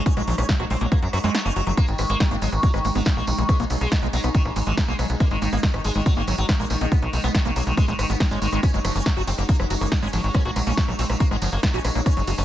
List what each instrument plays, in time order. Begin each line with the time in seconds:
Already playing: ambient pad G#3 D#4
0.06 sitar C#4, acid bass F#4, kick, closed hi-hat
0.17 analog synth bass A#1, sitar F#3, acid bass G#3, cross-stick, closed hi-hat
0.27 analog synth bass A#1, acid bass F3, sitar F#3, open hi-hat
0.38 analog synth bass A#1, sitar C#4, cross-stick, closed hi-hat
0.49 sitar F#3, acid bass F#3, kick, snare, closed hi-hat
0.60 analog synth bass A#1, sitar F#3, acid bass F#4, cross-stick, closed hi-hat
0.70 analog synth bass A#1, acid bass G#3, sitar C4, open hi-hat
0.81 analog synth bass A#1, sitar F#3, acid bass A#3, closed hi-hat
0.92 acid bass F#3, sitar A#3, kick, cross-stick, closed hi-hat
1.02 analog synth bass F#2, sitar F#3, closed hi-hat
1.13 analog synth bass F#2, sitar F#3, acid bass F#4, cross-stick, open hi-hat
1.24 analog synth bass F#2, acid bass G#3, sitar C4, snare, closed hi-hat
1.34 sitar F#3, acid bass F#4, cross-stick, snare, closed hi-hat
1.45 analog synth bass F#1, acid bass A#3, sitar C#4
1.56 analog synth bass F#1, sitar F#3, acid bass F#4, open hi-hat
1.67 analog synth bass F#1, acid bass F#3, sitar F#3, cross-stick, closed hi-hat
1.77 acid bass G#3, ambient pad G#3 D#4, sitar A#3, kick, cross-stick, closed hi-hat, tambourine
1.88 analog synth bass G#1, sitar D#3, closed hi-hat, tambourine
1.98 analog synth bass G#1, sitar D#3, acid bass G#3, cross-stick, open hi-hat, tambourine
2.10 analog synth bass G#1, acid bass G#3, sitar A#3, closed hi-hat, tambourine
2.20 sitar D#3, acid bass G#3, kick, cross-stick, snare, closed hi-hat, tambourine
2.31 analog synth bass G#1, sitar D#3, acid bass A#3, closed hi-hat, tambourine
2.42 analog synth bass G#1, acid bass F#3, sitar G#3, open hi-hat, tambourine
2.52 analog synth bass G#1, sitar D#3, cross-stick, closed hi-hat, tambourine
2.63 sitar F#3, acid bass G#3, kick, closed hi-hat, tambourine
2.73 analog synth bass G#1, sitar D#3, acid bass G#3, cross-stick, tambourine
2.85 analog synth bass G#1, sitar D#3, acid bass A#3, open hi-hat, tambourine
2.95 analog synth bass G#1, sitar F#3, acid bass B3, cross-stick, closed hi-hat, tambourine
3.05 sitar D#3, acid bass G#3, kick, snare, closed hi-hat, tambourine
3.17 analog synth bass A#1, sitar A#3, tambourine
3.27 analog synth bass A#1, sitar D#3, acid bass G#3, cross-stick, open hi-hat, tambourine
3.38 analog synth bass A#1, sitar D#3, acid bass G#3, closed hi-hat, tambourine
3.49 sitar G#3, acid bass G#3, kick, cross-stick, closed hi-hat, tambourine
3.59 analog synth bass B1, sitar G#2, acid bass A#3, closed hi-hat, tambourine
3.70 analog synth bass B1, sitar G#2, acid bass F#3, cross-stick, open hi-hat, tambourine
3.81 analog synth bass B1, sitar G#3, closed hi-hat, tambourine
3.92 sitar G#2, acid bass G#3, kick, snare, closed hi-hat, tambourine
4.02 analog synth bass B1, sitar G#2, acid bass G#3, cross-stick, closed hi-hat, tambourine
4.13 analog synth bass B1, sitar F#3, acid bass A#3, open hi-hat, tambourine
4.24 analog synth bass B1, sitar G#2, acid bass B3, cross-stick, closed hi-hat, tambourine
4.34 sitar D#3, acid bass G#3, kick, closed hi-hat, tambourine
4.45 analog synth bass A#1, sitar G#2, cross-stick, tambourine
4.56 analog synth bass G#1, sitar G#2, acid bass G#3, open hi-hat, tambourine
4.67 analog synth bass G#1, sitar E3, acid bass G#3, closed hi-hat, tambourine
4.77 sitar G#2, acid bass G#3, kick, cross-stick, snare, closed hi-hat, tambourine
4.88 analog synth bass B1, sitar G#3, acid bass A#3, tambourine
4.99 analog synth bass B1, sitar G#2, acid bass F#3, cross-stick, open hi-hat, tambourine
5.10 analog synth bass B1, sitar G#2, closed hi-hat, tambourine
5.20 acid bass G#3, sitar A#3, kick, cross-stick, closed hi-hat, tambourine
5.30 analog synth bass G#1, sitar D#3, acid bass G#3, closed hi-hat, tambourine
5.42 analog synth bass G#1, sitar D#3, acid bass A#3, open hi-hat, tambourine
5.52 analog synth bass G#1, sitar A#3, acid bass B3, cross-stick, closed hi-hat, tambourine
5.63 sitar D#3, acid bass G#3, kick, snare, closed hi-hat, tambourine
5.73 analog synth bass G#1, sitar D#3, cross-stick, closed hi-hat, tambourine
5.84 analog synth bass G#1, sitar G#3, acid bass G#3, open hi-hat, tambourine
5.95 analog synth bass G#1, sitar D#3, acid bass G#3, cross-stick, closed hi-hat, tambourine
6.06 sitar F#3, acid bass G#3, kick, closed hi-hat, tambourine
6.17 analog synth bass G#1, sitar D#3, acid bass A#3, tambourine
6.27 analog synth bass G#1, sitar D#3, acid bass F#3, cross-stick, open hi-hat, tambourine
6.38 analog synth bass G#1, sitar F#3, closed hi-hat, tambourine
6.49 sitar D#3, acid bass G#3, kick, cross-stick, snare, closed hi-hat, tambourine
6.60 analog synth bass A#1, acid bass G#3, sitar A#3, tambourine
6.70 analog synth bass A#1, sitar D#3, acid bass A#3, cross-stick, open hi-hat, tambourine
6.81 analog synth bass A#1, sitar D#3, acid bass B3, closed hi-hat, tambourine
6.92 acid bass G#3, sitar B3, kick, closed hi-hat, tambourine
7.02 analog synth bass B1, sitar D#3, cross-stick, closed hi-hat, tambourine
7.13 analog synth bass B1, sitar D#3, acid bass G#3, open hi-hat, tambourine
7.24 analog synth bass B1, acid bass G#3, sitar B3, cross-stick, closed hi-hat, tambourine
7.34 sitar D#3, acid bass G#3, kick, snare, closed hi-hat
7.45 analog synth bass B1, sitar D#3, acid bass A#3, cross-stick, closed hi-hat, tambourine
7.56 analog synth bass B1, acid bass F#3, sitar A#3, open hi-hat, tambourine
7.67 analog synth bass B1, sitar D#3, closed hi-hat, tambourine
7.77 acid bass G#3, sitar G#3, kick, cross-stick, closed hi-hat, tambourine
7.88 analog synth bass A#1, sitar D#3, acid bass G#3, tambourine
7.99 analog synth bass G#1, sitar D#3, acid bass G#3, cross-stick, open hi-hat, tambourine
8.10 analog synth bass G#1, acid bass G#3, sitar B3, closed hi-hat, tambourine
8.20 sitar D#3, acid bass G#3, kick, cross-stick, snare, closed hi-hat, tambourine
8.31 analog synth bass G#1, acid bass G#3, sitar C#4, tambourine
8.42 analog synth bass G#1, sitar D#3, acid bass G#3, open hi-hat, tambourine
8.52 analog synth bass G#1, sitar D#3, acid bass G#3, cross-stick, closed hi-hat
8.63 sitar C#4, acid bass F#4, kick, cross-stick, closed hi-hat, ride, tambourine
8.74 analog synth bass F#1, sitar F#3, acid bass G#3, closed hi-hat, tambourine
8.85 analog synth bass F#1, acid bass F3, sitar F#3, cross-stick, open hi-hat, ride, tambourine
8.95 analog synth bass F#1, sitar C#4, closed hi-hat, tambourine
9.05 sitar F#3, acid bass F#3, kick, cross-stick, snare, closed hi-hat, ride, tambourine
9.16 analog synth bass F#1, sitar F#3, acid bass F#4, closed hi-hat, tambourine
9.27 analog synth bass F#1, acid bass G#3, sitar C4, open hi-hat, ride, tambourine
9.38 analog synth bass F#1, sitar F#3, acid bass A#3, cross-stick, closed hi-hat, tambourine
9.49 acid bass F#3, sitar A#3, kick, closed hi-hat, ride, tambourine
9.60 analog synth bass F#1, sitar F#3, acid bass F#3, cross-stick, tambourine
9.70 analog synth bass F#1, sitar F#3, acid bass F#4, open hi-hat, ride, tambourine
9.81 analog synth bass F#1, sitar A#3, cross-stick, closed hi-hat, tambourine
9.92 sitar F#3, acid bass F#4, kick, snare, closed hi-hat, ride, tambourine
10.02 analog synth bass G#1, acid bass G#3, sitar C#4, tambourine
10.13 analog synth bass G#1, acid bass F3, sitar F#3, cross-stick, open hi-hat, ride, tambourine
10.24 analog synth bass G#1, sitar F#3, closed hi-hat, tambourine
10.34 acid bass F#3, sitar C#4, kick, cross-stick, closed hi-hat, ride, tambourine
10.45 analog synth bass A#1, sitar F#3, acid bass F#4, closed hi-hat, tambourine
10.56 analog synth bass A#1, sitar F#3, acid bass G#3, cross-stick, open hi-hat, ride, tambourine
10.66 analog synth bass A#1, acid bass A#3, sitar C#4, closed hi-hat, tambourine
10.77 sitar F#3, acid bass F#3, kick, snare, closed hi-hat, ride
10.88 analog synth bass A#1, acid bass F#3, sitar F#3, cross-stick, closed hi-hat, tambourine
10.99 analog synth bass A#1, sitar C4, acid bass F#4, open hi-hat, ride, tambourine
11.10 analog synth bass A#1, sitar F#3, cross-stick, closed hi-hat, tambourine
11.20 sitar A#3, acid bass F#4, kick, closed hi-hat, ride, tambourine
11.31 analog synth bass G#1, sitar F#3, acid bass G#3, cross-stick, tambourine
11.42 analog synth bass F#1, acid bass F3, sitar F#3, open hi-hat, ride, tambourine
11.52 analog synth bass F#1, sitar A#3, closed hi-hat, tambourine
11.63 acid bass F#3, sitar F#3, kick, cross-stick, snare, closed hi-hat, ride, tambourine
11.74 analog synth bass A#1, sitar C#4, acid bass F#4, tambourine
11.85 analog synth bass A#1, sitar F#3, acid bass G#3, cross-stick, open hi-hat, ride, tambourine
11.95 analog synth bass A#1, sitar F#3, acid bass A#3, closed hi-hat, tambourine
12.06 acid bass F#3, sitar C#4, kick, cross-stick, closed hi-hat, ride, tambourine
12.17 analog synth bass F#1, sitar C#3, acid bass F#3, closed hi-hat, tambourine
12.27 analog synth bass F#1, sitar C#3, acid bass F#4, open hi-hat, ride, tambourine
12.38 analog synth bass F#1, sitar C#4, cross-stick, closed hi-hat, tambourine